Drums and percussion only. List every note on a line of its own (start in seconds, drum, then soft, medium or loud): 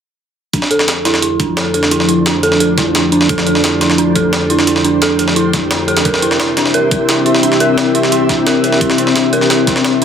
0.53 kick loud
0.53 closed hi-hat medium
0.62 snare soft
0.71 closed hi-hat medium
0.79 snare soft
0.88 snare loud
0.88 closed hi-hat medium
1.05 snare medium
1.05 closed hi-hat medium
1.14 snare soft
1.22 closed hi-hat medium
1.40 kick loud
1.40 closed hi-hat medium
1.57 snare loud
1.57 closed hi-hat medium
1.74 closed hi-hat medium
1.83 snare medium
1.91 closed hi-hat medium
2.00 snare soft
2.09 closed hi-hat medium
2.26 snare loud
2.26 closed hi-hat medium
2.43 closed hi-hat medium
2.52 snare soft
2.60 closed hi-hat medium
2.78 kick loud
2.78 snare soft
2.78 closed hi-hat medium
2.95 snare loud
2.95 closed hi-hat medium
3.12 closed hi-hat medium
3.21 snare medium
3.29 kick loud
3.29 closed hi-hat medium
3.38 snare soft
3.47 closed hi-hat medium
3.55 snare soft
3.64 snare loud
3.64 closed hi-hat medium
3.81 snare medium
3.81 closed hi-hat medium
3.90 snare soft
3.98 closed hi-hat medium
4.16 kick loud
4.16 closed hi-hat medium
4.33 snare loud
4.33 closed hi-hat medium
4.50 closed hi-hat medium
4.59 snare medium
4.67 closed hi-hat medium
4.76 snare soft
4.84 closed hi-hat medium
5.02 snare loud
5.02 closed hi-hat medium
5.19 closed hi-hat medium
5.28 snare medium
5.36 closed hi-hat medium
5.53 kick loud
5.53 snare soft
5.53 closed hi-hat medium
5.71 snare loud
5.71 closed hi-hat medium
5.88 closed hi-hat medium
5.97 snare loud
5.97 closed hi-hat medium
6.05 kick loud
6.05 closed hi-hat medium
6.14 snare soft
6.22 closed hi-hat medium
6.31 snare soft
6.40 snare loud
6.40 closed hi-hat medium
6.57 snare medium
6.57 closed hi-hat medium
6.66 snare soft
6.74 closed hi-hat medium
6.91 kick loud
6.91 closed hi-hat medium
7.09 snare loud
7.09 closed hi-hat medium
7.26 closed hi-hat medium
7.34 snare medium
7.43 closed hi-hat medium
7.52 snare soft
7.60 closed hi-hat medium
7.78 snare loud
7.78 closed hi-hat medium
7.95 closed hi-hat medium
8.03 snare medium
8.12 closed hi-hat medium
8.29 kick medium
8.29 snare soft
8.29 closed hi-hat medium
8.47 snare loud
8.47 closed hi-hat medium
8.64 closed hi-hat medium
8.72 snare medium
8.81 kick loud
8.81 closed hi-hat medium
8.90 snare medium
8.98 closed hi-hat medium
9.07 snare soft
9.16 snare loud
9.16 closed hi-hat medium
9.33 closed hi-hat medium
9.41 snare soft
9.50 snare loud
9.50 closed hi-hat medium
9.67 kick medium
9.67 snare soft
9.67 closed hi-hat medium
9.76 snare soft
9.84 snare loud
9.84 closed hi-hat medium